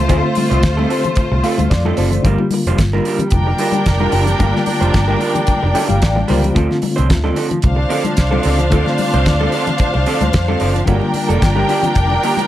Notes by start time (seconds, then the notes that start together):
Already playing: A3 F4 C5
0.08 D2 D3 A3 C4 F4 A4, kick, closed hi-hat, low conga
0.23 muted clean electric guitar stroke
0.35 muted clean electric guitar stroke, open hi-hat, high conga
0.50 C2 A3 C4 F4 C5, closed hi-hat
0.63 D2, muted clean electric guitar stroke, kick, snare, closed hi-hat
0.77 A3 C4 F4 A4, muted conga, high conga
0.89 A3 C4 F4 A4, open hi-hat
1.04 muted clean electric guitar stroke, closed hi-hat, low conga
1.16 muted clean electric guitar stroke, kick, closed hi-hat
1.32 C2, muted clean electric guitar stroke
1.43 A3 C4 F4 A4 F5, open hi-hat
1.58 D2, muted clean electric guitar stroke, closed hi-hat, high conga
1.70 F2 D5, muted clean electric guitar stroke, kick, snare, closed hi-hat
1.85 A3 C4 F4 A4, high conga
1.97 F#1 A3 C4 F4 A4 C5, open hi-hat
2.12 muted clean electric guitar stroke, closed hi-hat, low conga
2.22 G1 D3 G3 A3 D4 F4 A#4, kick, closed hi-hat, low conga
2.31 A#3
2.38 muted clean electric guitar stroke, muted conga
2.51 muted clean electric guitar stroke, open hi-hat, high conga
2.66 F1 G3 D4 F4 C5, closed hi-hat
2.78 G1, muted clean electric guitar stroke, kick, snare, closed hi-hat, muted conga
2.93 G3 D4 F4 A#4, high conga
3.05 G3 D4 F4 A#4, open hi-hat
3.19 muted clean electric guitar stroke, closed hi-hat, low conga
3.31 F1 D4 A#4 G5, muted clean electric guitar stroke, kick, closed hi-hat
3.47 muted clean electric guitar stroke
3.58 G3 D4 F4 A#4, open hi-hat
3.72 muted clean electric guitar stroke, closed hi-hat, high conga
3.86 F1, muted clean electric guitar stroke, kick, snare, closed hi-hat
4.00 G3 D4 F4 A#4, muted conga, high conga
4.12 F#1 G3 D4 F4 A#4, open hi-hat
4.26 muted clean electric guitar stroke, closed hi-hat, low conga
4.39 G1 D3 G3 A3 D4 F4 A#4, kick, closed hi-hat, muted conga, low conga
4.47 A#3
4.54 muted clean electric guitar stroke, snare
4.66 muted clean electric guitar stroke, open hi-hat, high conga
4.81 F1 G3 D4 F4 C5, closed hi-hat
4.93 G1, muted clean electric guitar stroke, kick, snare, closed hi-hat
5.08 G3 D4 F4 A#4, high conga
5.20 G3 D4 F4 A#4, open hi-hat
5.35 muted clean electric guitar stroke, closed hi-hat, low conga
5.47 muted clean electric guitar stroke, kick, closed hi-hat
5.63 F1, muted clean electric guitar stroke
5.75 G3 D4 F4 A#4 G5, open hi-hat
5.89 G1 F5, muted clean electric guitar stroke, closed hi-hat, high conga
6.02 A1 D5, kick, snare, closed hi-hat
6.16 muted clean electric guitar stroke, high conga
6.28 C#2 D3 G3 A#3 D4 F4 A#4 C5, open hi-hat
6.43 muted clean electric guitar stroke, closed hi-hat, low conga
6.55 D2 D3 F3 A3 C4 D4 F4 A4, kick, closed hi-hat, muted conga, low conga
6.69 muted clean electric guitar stroke, snare, muted conga
6.82 muted clean electric guitar stroke, open hi-hat, high conga
6.96 C2 F3 C4 D4 C5, closed hi-hat
7.09 D2, muted clean electric guitar stroke, kick, snare, closed hi-hat, muted conga
7.24 F3 C4 D4 A4, high conga
7.36 F3 C4 D4 A4, open hi-hat
7.50 muted clean electric guitar stroke, closed hi-hat, low conga
7.62 C2 D4 C5 F5, muted clean electric guitar stroke, kick, closed hi-hat, muted conga
7.76 muted clean electric guitar stroke
7.89 F3 C4 D4 A4, open hi-hat
8.05 muted clean electric guitar stroke, closed hi-hat, high conga
8.17 C2, muted clean electric guitar stroke, kick, snare, closed hi-hat
8.31 F3 C4 D4 A4, muted conga, high conga
8.43 C#2 F3 C4 D4 A4, open hi-hat
8.59 muted clean electric guitar stroke, closed hi-hat, low conga
8.70 D2 D3 F3 A3 C4 D4 F4 A4, kick, closed hi-hat, muted conga, low conga
8.86 muted clean electric guitar stroke, snare, muted conga
8.98 muted clean electric guitar stroke, open hi-hat, high conga
9.14 C2 F3 C4 D4 C5, closed hi-hat
9.26 D2, muted clean electric guitar stroke, kick, snare, closed hi-hat, muted conga
9.40 F3 C4 D4 A4, muted conga, high conga
9.52 F3 C4 D4 A4, open hi-hat
9.67 muted clean electric guitar stroke, closed hi-hat, low conga
9.78 muted clean electric guitar stroke, kick, closed hi-hat, muted conga
9.94 C2, muted clean electric guitar stroke, muted conga
10.06 F3 C4 D4 A4, open hi-hat
10.21 D2, muted clean electric guitar stroke, closed hi-hat, high conga
10.33 F2 C5, muted clean electric guitar stroke, kick, snare, closed hi-hat, muted conga
10.48 F3 C4 D4 A4, high conga
10.60 F#1 F3 C4 D4 A4, open hi-hat
10.75 muted clean electric guitar stroke, closed hi-hat, low conga
10.85 G1 D3 F3 G3 A#3 D4 F4 G4 A#4 G5, kick, closed hi-hat, muted conga, low conga
11.02 muted clean electric guitar stroke, muted conga
11.14 muted clean electric guitar stroke, open hi-hat, high conga
11.29 F1 F3 A#3 D4 A4, closed hi-hat
11.42 G1, muted clean electric guitar stroke, kick, snare, closed hi-hat
11.55 F3 A#3 D4 G4, high conga
11.69 F3 A#3 D4 G4, open hi-hat
11.83 muted clean electric guitar stroke, closed hi-hat, low conga
11.95 F1, muted clean electric guitar stroke, kick, closed hi-hat
12.10 muted clean electric guitar stroke, muted conga
12.23 F3 A#3 D4 G4, open hi-hat
12.37 muted clean electric guitar stroke, closed hi-hat, high conga